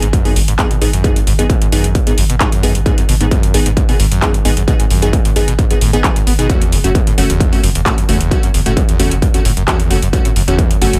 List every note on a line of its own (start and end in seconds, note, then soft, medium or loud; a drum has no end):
0.00 0.13 G#1 medium
0.00 0.08 G#2 medium
0.00 closed hi-hat medium
0.00 impact medium
0.13 0.38 F#2 loud
0.13 kick loud
0.13 closed hi-hat medium
0.25 0.33 B3 medium
0.25 0.33 D#4 medium
0.25 0.33 G#4 medium
0.25 open hi-hat medium
0.36 0.47 G#1 loud
0.36 0.43 G#2 medium
0.36 open hi-hat loud
0.48 0.58 G#1 medium
0.48 0.54 G#2 medium
0.48 closed hi-hat medium
0.59 0.65 F#2 medium
0.59 0.68 B3 loud
0.59 0.68 D#4 medium
0.59 0.68 G#4 loud
0.59 kick loud
0.59 clap loud
0.59 closed hi-hat medium
0.71 0.77 B2 medium
0.71 closed hi-hat medium
0.81 0.93 G#1 medium
0.81 0.88 G#2 medium
0.81 0.90 B3 medium
0.81 0.90 D#4 medium
0.81 0.90 G#4 loud
0.81 open hi-hat loud
0.93 1.04 G#1 medium
0.93 1.18 F#2 loud
0.93 closed hi-hat medium
1.04 1.18 B3 medium
1.04 1.18 D#4 medium
1.04 1.18 G#4 medium
1.04 kick loud
1.04 closed hi-hat medium
1.16 1.22 G#2 medium
1.16 closed hi-hat medium
1.27 1.38 G#1 loud
1.27 1.33 G#2 medium
1.27 open hi-hat loud
1.39 1.49 G#1 medium
1.39 1.45 F#2 medium
1.39 1.47 B3 medium
1.39 1.47 D#4 medium
1.39 1.47 G#4 medium
1.39 closed hi-hat medium
1.50 1.56 B2 medium
1.50 kick loud
1.50 closed hi-hat medium
1.62 1.68 G#2 medium
1.62 closed hi-hat medium
1.72 1.84 G#1 loud
1.72 1.97 F#2 loud
1.72 1.86 B3 loud
1.72 1.86 D#4 medium
1.72 1.86 G#4 loud
1.72 open hi-hat loud
1.84 1.95 G#1 medium
1.84 closed hi-hat medium
1.95 2.02 G#2 medium
1.95 kick loud
1.95 closed hi-hat medium
2.07 2.13 G#2 medium
2.07 2.15 B3 medium
2.07 2.15 D#4 medium
2.07 2.15 G#4 medium
2.07 closed hi-hat medium
2.18 2.29 G#1 loud
2.18 2.24 F#2 medium
2.18 open hi-hat loud
2.30 2.40 G#1 medium
2.30 2.36 B2 medium
2.30 closed hi-hat medium
2.40 2.47 G#2 medium
2.40 2.49 B3 loud
2.40 2.49 D#4 loud
2.40 2.49 G#4 loud
2.40 kick loud
2.40 clap loud
2.40 closed hi-hat medium
2.52 2.77 F#2 loud
2.52 closed hi-hat medium
2.63 2.74 G#1 medium
2.63 2.72 B3 medium
2.63 2.72 D#4 medium
2.63 2.72 G#4 medium
2.63 open hi-hat loud
2.75 2.86 G#1 medium
2.75 2.81 G#2 medium
2.75 closed hi-hat medium
2.86 2.93 G#2 medium
2.86 3.00 B3 medium
2.86 3.00 D#4 medium
2.86 3.00 G#4 medium
2.86 kick loud
2.86 closed hi-hat medium
2.98 3.04 F#2 medium
2.98 closed hi-hat medium
3.09 3.20 G#1 loud
3.09 3.15 B2 medium
3.09 open hi-hat loud
3.20 3.31 G#1 medium
3.20 3.27 G#2 medium
3.20 3.29 B3 medium
3.20 3.29 D#4 medium
3.20 3.29 G#4 medium
3.20 closed hi-hat medium
3.31 3.56 F#2 loud
3.31 kick loud
3.31 closed hi-hat medium
3.43 closed hi-hat medium
3.54 3.65 G#1 loud
3.54 3.61 G#2 medium
3.54 3.68 B3 medium
3.54 3.68 D#4 medium
3.54 3.68 G#4 loud
3.54 open hi-hat loud
3.66 3.77 G#1 medium
3.66 3.72 G#2 medium
3.66 closed hi-hat medium
3.77 3.83 F#2 medium
3.77 kick loud
3.77 closed hi-hat medium
3.89 3.95 B2 medium
3.89 3.97 B3 medium
3.89 3.97 D#4 medium
3.89 3.97 G#4 medium
3.89 open hi-hat medium
3.99 4.11 G#1 loud
3.99 4.06 G#2 medium
3.99 open hi-hat loud
4.11 4.22 G#1 medium
4.11 4.36 F#2 loud
4.11 closed hi-hat medium
4.22 4.31 B3 loud
4.22 4.31 D#4 loud
4.22 4.31 G#4 loud
4.22 kick loud
4.22 clap loud
4.22 closed hi-hat medium
4.34 4.40 G#2 medium
4.34 closed hi-hat medium
4.45 4.56 G#1 loud
4.45 4.52 G#2 medium
4.45 4.54 B3 medium
4.45 4.54 D#4 medium
4.45 4.54 G#4 loud
4.45 open hi-hat loud
4.57 4.68 G#1 medium
4.57 4.63 F#2 medium
4.57 closed hi-hat medium
4.68 4.74 B2 medium
4.68 4.82 B3 medium
4.68 4.82 D#4 medium
4.68 4.82 G#4 loud
4.68 kick loud
4.68 closed hi-hat medium
4.80 4.86 G#2 medium
4.80 closed hi-hat medium
4.90 5.02 G#1 loud
4.90 5.15 F#2 loud
4.90 open hi-hat loud
5.02 5.13 G#1 medium
5.02 5.11 B3 medium
5.02 5.11 D#4 medium
5.02 5.11 G#4 medium
5.02 closed hi-hat medium
5.13 5.20 G#2 medium
5.13 kick loud
5.13 closed hi-hat medium
5.25 5.31 G#2 medium
5.25 closed hi-hat medium
5.36 5.47 G#1 loud
5.36 5.42 F#2 medium
5.36 5.50 B3 medium
5.36 5.50 D#4 medium
5.36 5.50 G#4 loud
5.36 open hi-hat loud
5.48 5.59 G#1 medium
5.48 5.54 B2 medium
5.48 closed hi-hat medium
5.59 5.65 G#2 medium
5.59 kick loud
5.59 closed hi-hat medium
5.70 5.74 F#2 loud
5.70 5.79 B3 medium
5.70 5.79 D#4 medium
5.70 5.79 G#4 medium
5.70 closed hi-hat medium
5.81 5.93 G#1 loud
5.81 5.91 A2 loud
5.81 open hi-hat loud
5.93 6.04 G#1 medium
5.93 5.97 G#2 medium
5.93 6.01 B3 loud
5.93 6.01 D#4 medium
5.93 6.01 G#4 loud
5.93 closed hi-hat medium
6.04 6.11 D#3 medium
6.04 6.18 B3 medium
6.04 6.18 D#4 medium
6.04 6.18 G#4 loud
6.04 kick loud
6.04 clap loud
6.04 closed hi-hat medium
6.16 6.22 G#2 medium
6.16 closed hi-hat medium
6.27 6.38 G#1 loud
6.27 6.33 B3 medium
6.27 open hi-hat loud
6.39 6.49 G#1 medium
6.39 6.48 B2 medium
6.39 6.48 B3 medium
6.39 6.48 D#4 medium
6.39 6.48 G#4 loud
6.39 closed hi-hat medium
6.49 6.74 E2 loud
6.49 6.64 A3 medium
6.49 6.64 C#4 medium
6.49 6.64 F#4 medium
6.49 kick loud
6.49 closed hi-hat medium
6.62 closed hi-hat medium
6.72 6.84 F#1 loud
6.72 6.79 F#2 medium
6.72 open hi-hat loud
6.84 6.95 F#1 medium
6.84 6.90 F#2 medium
6.84 6.92 A3 medium
6.84 6.92 C#4 medium
6.84 6.92 F#4 medium
6.84 closed hi-hat medium
6.95 7.02 E2 medium
6.95 kick loud
6.95 closed hi-hat medium
7.07 7.13 A2 medium
7.07 closed hi-hat medium
7.18 7.29 F#1 loud
7.18 7.24 F#2 medium
7.18 7.32 A3 loud
7.18 7.32 C#4 medium
7.18 7.32 F#4 loud
7.18 open hi-hat loud
7.30 7.40 F#1 medium
7.30 7.54 E2 loud
7.30 closed hi-hat medium
7.40 kick loud
7.40 closed hi-hat medium
7.52 7.58 F#2 medium
7.52 7.61 A3 medium
7.52 7.61 C#4 medium
7.52 7.61 F#4 medium
7.52 open hi-hat medium
7.63 7.74 F#1 loud
7.63 7.70 F#2 medium
7.63 open hi-hat loud
7.75 7.86 F#1 medium
7.75 7.81 E2 medium
7.75 closed hi-hat medium
7.86 7.93 A2 medium
7.86 7.95 A3 loud
7.86 7.95 C#4 medium
7.86 7.95 F#4 loud
7.86 kick loud
7.86 clap loud
7.86 closed hi-hat medium
7.98 8.04 F#2 medium
7.98 closed hi-hat medium
8.09 8.20 F#1 loud
8.09 8.33 E2 loud
8.09 8.18 A3 medium
8.09 8.18 C#4 medium
8.09 8.18 F#4 medium
8.09 open hi-hat loud
8.21 8.31 F#1 medium
8.21 closed hi-hat medium
8.31 8.38 F#2 medium
8.31 8.45 A3 medium
8.31 8.45 C#4 medium
8.31 8.45 F#4 medium
8.31 kick loud
8.31 closed hi-hat medium
8.43 8.49 F#2 medium
8.43 closed hi-hat medium
8.54 8.65 F#1 loud
8.54 8.61 E2 medium
8.54 open hi-hat medium
8.66 8.77 F#1 medium
8.66 8.72 A2 medium
8.66 8.74 A3 medium
8.66 8.74 C#4 medium
8.66 8.74 F#4 medium
8.66 closed hi-hat medium
8.77 8.83 F#2 medium
8.77 kick loud
8.77 closed hi-hat medium
8.89 9.13 E2 loud
8.89 closed hi-hat medium
8.99 9.11 F#1 loud
8.99 9.14 A3 medium
8.99 9.14 C#4 medium
8.99 9.14 F#4 loud
8.99 open hi-hat loud
9.11 9.22 F#1 medium
9.11 9.17 F#2 medium
9.11 closed hi-hat medium
9.22 9.29 F#2 medium
9.22 kick loud
9.22 closed hi-hat medium
9.34 9.40 E2 medium
9.34 9.42 A3 medium
9.34 9.42 C#4 medium
9.34 9.42 F#4 medium
9.34 closed hi-hat medium
9.45 9.56 F#1 loud
9.45 9.52 A2 medium
9.45 open hi-hat loud
9.57 9.68 F#1 medium
9.57 9.63 F#2 medium
9.57 closed hi-hat medium
9.68 9.92 E2 loud
9.68 9.77 A3 loud
9.68 9.77 C#4 loud
9.68 9.77 F#4 loud
9.68 kick loud
9.68 clap loud
9.68 closed hi-hat medium
9.80 closed hi-hat medium
9.90 10.02 F#1 medium
9.90 9.97 F#2 medium
9.90 9.99 A3 medium
9.90 9.99 C#4 medium
9.90 9.99 F#4 loud
9.90 open hi-hat loud
10.02 10.13 F#1 medium
10.02 10.08 F#2 medium
10.02 closed hi-hat medium
10.13 10.20 E2 medium
10.13 10.27 A3 medium
10.13 10.27 C#4 medium
10.13 10.27 F#4 medium
10.13 kick loud
10.13 closed hi-hat medium
10.25 10.31 A2 medium
10.25 closed hi-hat medium
10.36 10.47 F#1 loud
10.36 10.42 F#2 medium
10.36 open hi-hat loud
10.48 10.58 F#1 medium
10.48 10.72 E2 loud
10.48 10.56 A3 medium
10.48 10.56 C#4 medium
10.48 10.56 F#4 medium
10.48 closed hi-hat medium
10.59 kick loud
10.59 closed hi-hat medium
10.70 10.77 F#2 medium
10.70 closed hi-hat medium
10.81 10.93 F#1 loud
10.81 10.88 F#2 medium
10.81 10.96 A3 loud
10.81 10.96 C#4 medium
10.81 10.96 F#4 loud
10.81 open hi-hat loud
10.93 10.99 F#1 medium
10.93 10.99 E2 medium
10.93 closed hi-hat medium